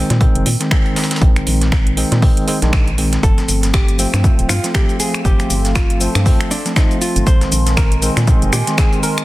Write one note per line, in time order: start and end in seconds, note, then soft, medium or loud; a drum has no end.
0.00 0.18 D#3 medium
0.00 0.18 G#3 medium
0.00 0.18 C4 loud
0.10 0.27 A#2 medium
0.10 snare soft
0.10 closed hi-hat medium
0.20 0.48 D#3 medium
0.20 0.48 G#3 medium
0.20 0.48 C4 loud
0.20 kick loud
0.20 closed hi-hat medium
0.35 0.43 F1 loud
0.35 closed hi-hat medium
0.46 0.56 A#2 medium
0.46 closed hi-hat medium
0.46 open hi-hat loud
0.60 0.69 D#3 medium
0.60 0.70 G#3 medium
0.60 0.70 C4 medium
0.60 snare soft
0.60 closed hi-hat medium
0.71 1.19 D#3 medium
0.71 1.19 G#3 medium
0.71 1.19 C4 medium
0.71 finger snap loud
0.71 kick loud
0.71 snare loud
0.71 closed hi-hat medium
0.86 closed hi-hat soft
0.96 snare medium
0.96 closed hi-hat medium
0.96 open hi-hat loud
1.04 snare medium
1.04 closed hi-hat medium
1.11 snare medium
1.11 closed hi-hat medium
1.16 snare medium
1.16 closed hi-hat medium
1.21 1.40 A#1 loud
1.21 1.94 D#3 medium
1.21 1.95 G#3 medium
1.21 1.95 C4 medium
1.21 kick loud
1.21 closed hi-hat medium
1.36 finger snap soft
1.36 closed hi-hat soft
1.47 2.05 A#1 medium
1.47 closed hi-hat medium
1.47 open hi-hat loud
1.61 snare soft
1.61 closed hi-hat medium
1.72 finger snap loud
1.72 kick loud
1.72 snare loud
1.72 closed hi-hat medium
1.87 closed hi-hat soft
1.97 2.20 D#3 medium
1.97 2.20 G#3 medium
1.97 2.20 C4 loud
1.97 closed hi-hat medium
1.97 open hi-hat loud
2.12 2.28 A#2 loud
2.12 snare medium
2.12 closed hi-hat medium
2.22 2.45 D#3 loud
2.22 2.46 G#3 medium
2.22 2.46 C4 loud
2.22 kick loud
2.22 open hi-hat medium
2.37 closed hi-hat soft
2.47 2.59 D#3 medium
2.47 2.59 G#3 medium
2.47 2.59 C4 loud
2.47 closed hi-hat medium
2.47 open hi-hat loud
2.62 3.18 A#1 medium
2.62 2.89 D#3 loud
2.62 2.89 G#3 medium
2.62 2.89 D4 loud
2.62 snare soft
2.62 closed hi-hat medium
2.73 finger snap loud
2.73 kick loud
2.73 snare loud
2.73 closed hi-hat medium
2.87 closed hi-hat soft
2.98 3.20 D#3 medium
2.98 3.21 G#3 medium
2.98 3.21 C4 medium
2.98 closed hi-hat medium
2.98 open hi-hat loud
3.13 snare medium
3.13 closed hi-hat medium
3.23 3.42 G1 loud
3.23 3.96 A3 medium
3.23 3.97 C4 medium
3.23 7.23 A4 medium
3.23 3.67 A4 medium
3.23 7.23 F5 medium
3.23 5.23 G5 medium
3.23 9.25 C6 medium
3.23 kick loud
3.23 closed hi-hat medium
3.23 cabasa soft
3.38 snare soft
3.38 closed hi-hat soft
3.38 cabasa soft
3.48 4.06 G1 loud
3.48 closed hi-hat medium
3.48 open hi-hat loud
3.48 cabasa medium
3.63 snare medium
3.63 closed hi-hat medium
3.63 cabasa soft
3.74 4.07 G4 medium
3.74 finger snap loud
3.74 kick loud
3.74 snare loud
3.74 closed hi-hat medium
3.74 cabasa soft
3.88 closed hi-hat medium
3.88 cabasa soft
3.98 4.21 F3 medium
3.98 4.22 A3 medium
3.98 4.22 C4 loud
3.98 closed hi-hat medium
3.98 open hi-hat loud
3.98 cabasa medium
4.14 4.30 G2 loud
4.14 finger snap medium
4.14 snare medium
4.14 closed hi-hat medium
4.14 cabasa soft
4.24 4.51 F3 loud
4.24 4.51 A3 medium
4.24 4.52 C4 loud
4.24 kick loud
4.24 closed hi-hat medium
4.24 cabasa soft
4.39 4.46 D1 loud
4.39 closed hi-hat soft
4.39 cabasa soft
4.49 4.60 G2 medium
4.49 4.71 F4 medium
4.49 finger snap medium
4.49 closed hi-hat medium
4.49 open hi-hat loud
4.49 cabasa medium
4.63 4.73 F3 medium
4.63 4.73 A3 medium
4.63 4.73 C4 medium
4.63 snare soft
4.63 closed hi-hat medium
4.63 cabasa soft
4.74 5.22 F3 medium
4.74 5.22 A3 medium
4.74 5.23 C4 medium
4.74 4.97 G4 medium
4.74 finger snap loud
4.74 kick loud
4.74 snare loud
4.74 closed hi-hat medium
4.74 cabasa soft
4.89 closed hi-hat soft
4.89 cabasa soft
5.00 5.22 G#4 medium
5.00 closed hi-hat medium
5.00 open hi-hat loud
5.00 cabasa medium
5.14 finger snap medium
5.14 closed hi-hat medium
5.14 cabasa soft
5.24 5.44 G1 loud
5.24 5.98 F3 medium
5.24 5.98 A3 medium
5.24 5.99 C4 medium
5.24 5.69 G4 medium
5.24 7.25 A5 medium
5.24 kick loud
5.24 closed hi-hat medium
5.24 cabasa soft
5.40 finger snap soft
5.40 closed hi-hat soft
5.40 cabasa soft
5.50 6.08 G1 medium
5.50 closed hi-hat medium
5.50 open hi-hat loud
5.50 cabasa medium
5.65 snare soft
5.65 closed hi-hat medium
5.65 cabasa soft
5.75 6.09 F4 medium
5.75 finger snap loud
5.75 kick loud
5.75 snare loud
5.75 closed hi-hat medium
5.75 cabasa soft
5.90 closed hi-hat medium
5.90 cabasa soft
6.00 6.23 F3 medium
6.00 6.23 A3 medium
6.00 6.24 C4 loud
6.00 closed hi-hat medium
6.00 open hi-hat medium
6.00 cabasa medium
6.15 6.32 G2 loud
6.15 finger snap medium
6.15 snare medium
6.15 closed hi-hat medium
6.15 cabasa soft
6.25 6.53 F3 medium
6.25 6.53 A3 medium
6.25 6.53 C4 loud
6.25 kick loud
6.25 open hi-hat medium
6.25 cabasa soft
6.41 finger snap medium
6.41 closed hi-hat medium
6.41 cabasa soft
6.51 6.73 D4 medium
6.51 closed hi-hat medium
6.51 open hi-hat loud
6.51 cabasa medium
6.65 6.74 F3 medium
6.65 6.75 A3 medium
6.65 6.75 C4 medium
6.65 snare soft
6.65 closed hi-hat medium
6.65 cabasa soft
6.76 7.24 F3 medium
6.76 7.24 A3 medium
6.76 7.24 C4 medium
6.76 6.98 D#4 medium
6.76 finger snap loud
6.76 kick loud
6.76 snare loud
6.76 closed hi-hat medium
6.76 cabasa soft
6.91 closed hi-hat soft
6.91 cabasa soft
7.01 7.23 F4 medium
7.01 closed hi-hat medium
7.01 open hi-hat medium
7.01 cabasa medium
7.16 7.23 G1 medium
7.16 closed hi-hat medium
7.16 cabasa soft
7.26 7.45 A#1 loud
7.26 7.99 D#3 medium
7.26 9.25 A#4 medium
7.26 7.71 C5 medium
7.26 9.25 D#5 medium
7.26 9.25 G#5 medium
7.26 kick loud
7.26 closed hi-hat medium
7.26 cabasa soft
7.41 snare medium
7.41 closed hi-hat soft
7.41 cabasa soft
7.52 8.10 A#1 loud
7.52 closed hi-hat medium
7.52 open hi-hat loud
7.52 cabasa medium
7.67 snare medium
7.67 closed hi-hat medium
7.67 cabasa soft
7.77 8.10 A#4 medium
7.77 finger snap loud
7.77 kick loud
7.77 snare loud
7.77 closed hi-hat medium
7.77 cabasa soft
7.92 closed hi-hat medium
7.92 cabasa soft
8.02 8.25 D#3 medium
8.02 8.25 G#3 medium
8.02 8.25 C4 loud
8.02 closed hi-hat medium
8.02 open hi-hat medium
8.02 cabasa medium
8.17 8.33 A#2 loud
8.17 finger snap medium
8.17 snare medium
8.17 closed hi-hat medium
8.17 cabasa soft
8.27 8.54 D#3 medium
8.27 8.55 G#3 medium
8.27 8.55 C4 loud
8.27 kick loud
8.27 closed hi-hat medium
8.27 cabasa soft
8.42 8.49 F1 loud
8.42 closed hi-hat medium
8.42 cabasa soft
8.53 8.63 A#2 medium
8.53 8.75 G4 medium
8.53 finger snap medium
8.53 closed hi-hat medium
8.53 open hi-hat medium
8.53 cabasa medium
8.67 8.76 D#3 medium
8.67 8.76 G#3 medium
8.67 8.77 C4 medium
8.67 snare soft
8.67 closed hi-hat medium
8.67 cabasa soft
8.77 9.25 D#3 medium
8.77 9.25 G#3 medium
8.77 9.25 C4 medium
8.77 9.00 G#4 medium
8.77 finger snap loud
8.77 kick loud
8.77 snare loud
8.77 closed hi-hat medium
8.77 cabasa soft
8.93 closed hi-hat soft
8.93 cabasa soft
9.03 9.25 A#4 medium
9.03 closed hi-hat medium
9.03 open hi-hat medium
9.03 cabasa medium
9.18 finger snap medium
9.18 closed hi-hat medium
9.18 cabasa soft